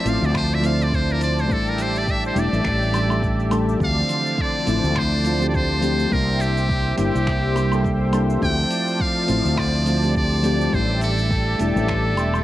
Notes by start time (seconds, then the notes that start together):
Already playing: F3 A3 C4 E4 C5 D5 E5 A5
0.04 A1 F3 A3 C4 E4, open hi-hat, shaker
0.09 F5
0.22 D2 D5, shaker
0.34 C5, finger snap, kick, low woodblock, shaker
0.52 E5, shaker
0.60 F3 A3 C4, open hi-hat
0.65 E4 F5, shaker
0.81 D5, shaker
0.92 C5, kick, shaker
1.10 A#4, shaker
1.21 D5, open hi-hat, shaker
1.39 C5, shaker
1.47 A1 G3 A3 D4 G4 E5, kick, shaker
1.52 E4 A4
1.67 A#4, shaker
1.79 C5, open hi-hat, shaker
1.96 D5, shaker
2.07 E5, kick, shaker
2.25 C5, shaker
2.35 E1 G3 A3 D4 E4, open hi-hat, shaker
2.39 D5
2.53 A1, shaker
2.65 A1, finger snap, kick, shaker
2.82 shaker
2.92 G3 A3 D4 G4, open hi-hat, low woodblock, shaker
3.08 G3 A3 D4 A4, low woodblock, shaker
3.23 kick, shaker
3.40 shaker
3.50 G3 A3 D4 A4, open hi-hat, low woodblock, shaker
3.69 shaker
3.77 D2 F3 A3 D5, kick
3.81 D3 E3 C4 C5 F5 A5, shaker
4.09 open hi-hat, shaker
4.27 shaker
4.38 D5, kick, shaker
4.66 A1 F3 A3 C4 E4, open hi-hat, shaker
4.84 D2, shaker
4.96 C5, finger snap, kick, low woodblock, shaker
5.23 F3 A3 C4 F4, open hi-hat, shaker
5.39 F3 A3 C4 G4, shaker
5.49 D5
5.54 C5, kick, shaker
5.81 F3 A3 C4 G4, open hi-hat, shaker
6.00 shaker
6.08 C2 G3 A#3 G4 E5 G5, kick
6.12 D4 E4 A#4, shaker
6.40 G4, open hi-hat, shaker
6.57 shaker
6.69 kick, shaker
6.97 G1 G3 A#3 D4 E4 G4, open hi-hat, shaker
7.15 C2, shaker
7.27 finger snap, kick, shaker
7.54 G3 A#3 D4 G4, open hi-hat, low woodblock, shaker
7.71 G3 A#3 D4 A4, low woodblock, shaker
7.84 kick, shaker
8.11 G3 A#3 D4 A4, open hi-hat, low woodblock, shaker
8.30 shaker
8.39 D2 F3 A3 D5 A5, kick, shaker
8.43 C4 E4 G5
8.71 open hi-hat, shaker
8.88 shaker
9.00 F5, kick, shaker
9.26 A1 F3 A3 C4 E4, open hi-hat, shaker
9.45 D2, shaker
9.57 D5, finger snap, kick, low woodblock, shaker
9.85 F3 A3 C4 F4, open hi-hat, shaker
10.02 F3 A3 C4 G4, shaker
10.15 D5, kick, shaker
10.42 F3 A3 C4 G4, open hi-hat, shaker
10.61 shaker
10.70 A1 G3 A3 D4 G4 E5, kick
10.74 E4 C5, shaker
11.01 A4, open hi-hat, shaker
11.19 shaker
11.31 kick, shaker
11.59 E1 G3 A3 D4 E4 A4, open hi-hat, shaker
11.76 A1, shaker
11.88 finger snap, kick, shaker
12.17 E1, open hi-hat, low woodblock, shaker
12.34 low woodblock, shaker